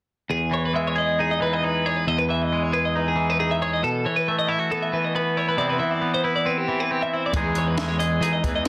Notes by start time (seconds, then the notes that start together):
0.30 E2 G#4
0.51 E3 C#5
0.65 B4
0.74 G#3 E5
0.87 C#5
0.96 G#4 D#5
1.19 D#4 G#4
1.31 D#5
1.40 E3 B4
1.53 D#5
1.63 D#4 B4
1.86 G#4 C#5
1.96 B4
2.07 E2 D#5
2.19 B4
2.29 E3 E5
2.42 D#5
2.53 G#3
2.63 C#5
2.73 G#4 B4
2.85 D#5
2.96 D#4 B4
3.08 G#4
3.16 E3
3.30 B4
3.39 D#4 G#4
3.51 E5
3.62 G#4 C#5
3.73 D#5
3.83 B2 A4
4.05 E3 C#5
4.16 B4
4.28 A3 E5
4.39 D#5
4.48 E4 E5
4.59 F#4
4.71 B3 A4
4.82 E5
4.93 E3 B4
5.05 D#5
5.15 B3 B4
5.37 E4 C#5
5.49 B4
5.57 C3 E3 B3 C4 E4 D5
5.69 B4
5.79 E3 E5
5.91 D5
6.01 B3
6.14 C5
6.24 E4 B4
6.36 D5
6.45 C4 B4
6.58 G4
6.68 E3
6.80 B4
6.91 C4 G4
7.03 E5
7.13 E4 C5
7.26 D5
7.33 E2 E3 G#3 D#4 G#4, kick, closed hi-hat
7.55 E3 C#5, closed hi-hat
7.68 B4
7.78 G#3 E5, snare, closed hi-hat
7.88 C#5
7.99 G#4 D#5, closed hi-hat
8.20 E3 D#4 G#4, closed hi-hat
8.33 D#5
8.44 E2 E3 B4, kick, closed hi-hat
8.55 D#5